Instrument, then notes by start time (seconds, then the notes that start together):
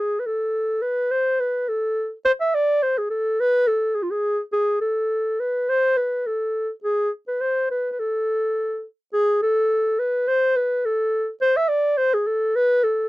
clarinet
Already playing: G#4
0.19 B4
0.26 A4
0.82 B4
1.11 C5
1.40 B4
1.68 A4
2.25 C5
2.41 E5
2.54 D5
2.83 C5
2.98 G#4
3.10 A4
3.40 B4
3.67 A4
3.95 G#4
4.03 F4
4.11 G#4
4.53 G#4
4.81 A4
5.40 B4
5.69 C5
5.97 B4
6.27 A4
6.84 G#4
7.28 B4
7.41 C5
7.71 B4
7.91 B4
7.99 A4
9.13 G#4
9.42 A4
9.99 B4
10.28 C5
10.56 B4
10.85 A4
11.41 C5
11.56 E5
11.69 D5
11.97 C5
12.14 G#4
12.27 A4
12.55 B4
12.83 A4